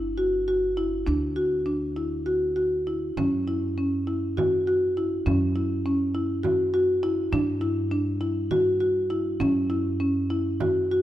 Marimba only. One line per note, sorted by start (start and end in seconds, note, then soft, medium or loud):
0.18 0.38 F#4 medium
0.48 0.68 F#4 medium
0.77 0.98 E4 medium
1.07 1.27 D4 medium
1.36 1.57 F#4 medium
1.66 1.87 D4 medium
1.96 2.17 E4 medium
2.26 2.47 F#4 medium
2.56 2.77 F#4 medium
2.87 3.08 E4 medium
3.17 3.38 C#4 medium
3.48 3.68 E4 medium
3.78 3.98 C#4 medium
4.07 4.28 E4 medium
4.37 4.58 F#4 medium
4.67 4.88 F#4 medium
4.97 5.17 E4 medium
5.26 5.46 C#4 medium
5.56 5.76 E4 medium
5.86 6.06 C#4 medium
6.15 6.35 E4 medium
6.43 6.64 F#4 medium
6.74 6.94 F#4 medium
7.03 7.23 E4 medium
7.33 7.53 D4 medium
7.61 7.82 E4 medium
7.91 8.12 D4 medium
8.21 8.41 E4 medium
8.51 8.71 F#4 medium
8.80 9.01 F#4 medium
9.10 9.31 E4 medium
9.40 9.61 C#4 medium
9.70 9.90 E4 medium
10.00 10.21 C#4 medium
10.30 10.51 E4 medium
10.61 10.82 F#4 medium
10.91 11.02 F#4 medium